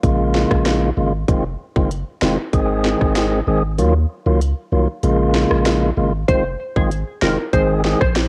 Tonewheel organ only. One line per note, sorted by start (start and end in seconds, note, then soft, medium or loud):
0.03 0.90 C#3 medium
0.03 0.90 G#3 medium
0.03 0.90 A#3 medium
0.03 0.90 F4 loud
0.97 1.13 C#3 medium
0.97 1.13 G#3 medium
0.97 1.13 A#3 medium
0.97 1.13 F4 medium
1.28 1.44 D#3 medium
1.28 1.44 G#3 medium
1.28 1.44 C4 medium
1.28 1.44 F4 loud
1.76 1.90 D#3 medium
1.76 1.90 G#3 medium
1.76 1.90 C4 medium
1.76 1.90 F4 medium
2.22 2.38 D#3 medium
2.22 2.38 G#3 medium
2.22 2.38 C4 medium
2.22 2.38 F4 medium
2.53 3.40 D#3 medium
2.53 3.40 G#3 medium
2.53 3.40 C4 medium
2.53 3.40 G#4 loud
3.47 3.63 D#3 medium
3.47 3.63 G#3 medium
3.47 3.63 C4 medium
3.47 3.63 G#4 medium
3.78 3.94 D#3 medium
3.78 3.94 F#3 medium
3.78 3.94 A#3 medium
3.78 3.94 F4 loud
4.26 4.40 D#3 medium
4.26 4.40 F#3 medium
4.26 4.40 A#3 medium
4.26 4.40 F4 medium
4.72 4.88 D#3 medium
4.72 4.88 F#3 medium
4.72 4.88 A#3 medium
4.72 4.88 F4 medium
5.03 5.90 C#3 medium
5.03 5.90 G#3 medium
5.03 5.90 A#3 medium
5.03 5.90 F4 loud
5.97 6.13 C#3 medium
5.97 6.13 G#3 medium
5.97 6.13 A#3 medium
5.97 6.13 F4 medium
6.28 6.44 D#3 medium
6.28 6.44 G#3 medium
6.28 6.44 C4 medium
6.28 6.44 F4 loud
6.76 6.90 D#3 medium
6.76 6.90 G#3 medium
6.76 6.90 C4 medium
6.76 6.90 F4 medium
7.22 7.38 D#3 medium
7.22 7.38 G#3 medium
7.22 7.38 C4 medium
7.22 7.38 F4 medium
7.53 7.82 D#3 medium
7.53 7.82 G#3 medium
7.53 7.83 C4 medium
7.53 7.83 G#4 loud
7.85 8.00 D#3 medium
7.85 8.01 G#3 medium
7.85 8.01 C4 medium
7.85 8.01 G#4 medium